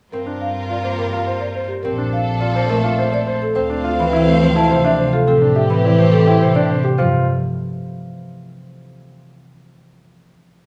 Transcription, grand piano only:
0.26 D4
0.69 F4
0.84 C5
1.13 F4
1.27 C5
1.55 C5
1.98 D4
2.41 F4
2.55 C5
2.83 F4
2.98 C5
3.27 C5
3.70 D4
3.84 F4
4.13 E4
4.27 C5
4.56 E4
4.70 C5
4.84 D4
4.99 C5
5.13 F4
5.42 D4
5.56 G4
5.85 E4
5.99 C5
6.27 E4
6.42 C5
6.56 D4
6.70 C5
6.84 G4
6.98 F4

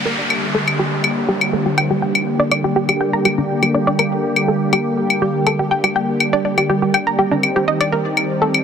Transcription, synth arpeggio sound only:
0.05 A#4
0.55 A4
0.79 G4
1.28 G4
1.53 A4
1.66 G4
1.78 G5
1.90 G4
2.02 G5
2.40 D5
2.51 D5
2.64 G4
2.76 G4
2.89 G4
3.01 G5
3.13 A#5
3.25 G4
3.38 D4
3.63 G4
3.74 D5
3.87 D5
3.99 A#4
4.48 A4
4.73 G4
5.22 G4
5.47 A4
5.59 G4
5.71 G5
5.84 G4
5.96 G5
6.33 D5
6.45 D5
6.58 G4
6.69 G4
6.82 G4
6.94 G5
7.07 A#5
7.19 G4
7.31 D4
7.56 G4
7.68 D#5
7.81 D5
7.92 A#4
8.42 A4

